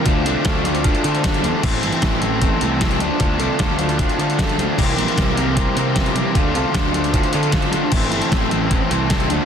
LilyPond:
<<
  \new Staff \with { instrumentName = "Analog synth pad" } { \time 4/4 \key d \minor \tempo 4 = 153 <c'' f'' d'''>1 | <a' g'' c'''>2.~ <a' g'' c'''>8 <c'' f'' d'''>8~ | <c'' f'' d'''>1 | <bes' e'' c'''>1 |
<c'' f'' d'''>1 | <a' g'' c'''>2.~ <a' g'' c'''>8 <c'' f'' d'''>8 | }
  \new Staff \with { instrumentName = "Overdriven electric guitar" } { \time 4/4 \key d \minor <d d' f' a'>8 <d d' f' a'>8 <d d' f' a'>8 <d d' f' a'>8 <d d' f' a'>8 <d d' f' a'>8 <d d' f' a'>8 <d d' f' a'>8 | <a, e a c' e' a'>8 <a, e a c' e' a'>8 <a, e a c' e' a'>8 <a, e a c' e' a'>8 <a, e a c' e' a'>8 <a, e a c' e' a'>8 <a, e a c' e' a'>8 <d d' f' a'>8 | <d d' f' a'>8 <d d' f' a'>8 <d d' f' a'>8 <d d' f' a'>8 <d d' f' a'>8 <d d' f' a'>8 <d d' f' a'>8 <d d' f' a'>8 | <c e g c' e' bes'>8 <c e g c' e' bes'>8 <c e g c' e' bes'>8 <c e g c' e' bes'>8 <c e g c' e' bes'>8 <c e g c' e' bes'>8 <c e g c' e' bes'>8 <c e g c' e' bes'>8 |
<d d' f' a'>8 <d d' f' a'>8 <d d' f' a'>8 <d d' f' a'>8 <d d' f' a'>8 <d d' f' a'>8 <d d' f' a'>8 <d d' f' a'>8 | <a, e a c' e' a'>8 <a, e a c' e' a'>8 <a, e a c' e' a'>8 <a, e a c' e' a'>8 <a, e a c' e' a'>8 <a, e a c' e' a'>8 <a, e a c' e' a'>8 <d d' f' a'>8 | }
  \new Staff \with { instrumentName = "Overdriven electric guitar" } { \time 4/4 \key d \minor <f a d'>8 <f a d'>8 <f a d'>8 <f a d'>8 <f a d'>8 <f a d'>8 <f a d'>8 <f a d'>8 | <e a c'>8 <e a c'>8 <e a c'>8 <e a c'>8 <e a c'>8 <e a c'>8 <e a c'>8 <f a d'>8 | <f a d'>8 <f a d'>8 <f a d'>8 <f a d'>8 <f a d'>8 <f a d'>8 <f a d'>8 <f a d'>8 | <e bes c' g'>8 <e bes c' g'>8 <e bes c' g'>8 <e bes c' g'>8 <e bes c' g'>8 <e bes c' g'>8 <e bes c' g'>8 <e bes c' g'>8 |
<f a d' f'>8 <f a d' f'>8 <f a d' f'>8 <f a d' f'>8 <f a d' f'>8 <f a d' f'>8 <f a d' f'>8 <f a d' f'>8 | <e a c'>8 <e a c'>8 <e a c'>8 <e a c'>8 <e a c'>8 <e a c'>8 <e a c'>8 <f a d'>8 | }
  \new Staff \with { instrumentName = "Fingered electric bass" } { \clef bass \time 4/4 \key d \minor d,8 c,16 r16 d,4. d4 e,16 r16 | a,,8 g,,16 r16 a,,4. c,4 d,16 r16 | d,8 c,16 r16 d,4. d4 d,16 r16 | c,8 bes,,16 r16 c,4. c4 c16 r16 |
d,8 c,16 r16 d,4. d4 d16 r16 | a,,8 g,,16 r16 a,,4. c,4 d,16 r16 | }
  \new DrumStaff \with { instrumentName = "Drums" } \drummode { \time 4/4 <hh bd>8 hh8 <hh bd sn>8 hh16 hh16 <hh bd>16 hh16 hh16 hh16 <hh bd sn>16 hh16 hh8 | <cymc bd>8 hh16 hh16 <hh bd sn>8 hh8 <hh bd>8 hh8 <hh bd sn>16 hh16 hh8 | <hh bd>8 hh8 <hh bd sn>8 hh16 hh16 <hh bd>16 hh16 hh16 hh16 <hh bd sn>16 hh16 hh8 | <cymc bd>8 hh16 hh16 <hh bd sn>8 hh8 <hh bd>8 hh8 <hh bd sn>16 hh16 hh8 |
<hh bd>8 hh8 <hh bd sn>8 hh16 hh16 <hh bd>16 hh16 hh16 hh16 <hh bd sn>16 hh16 hh8 | <cymc bd>8 hh16 hh16 <hh bd sn>8 hh8 <hh bd>8 hh8 <hh bd sn>16 hh16 hh8 | }
>>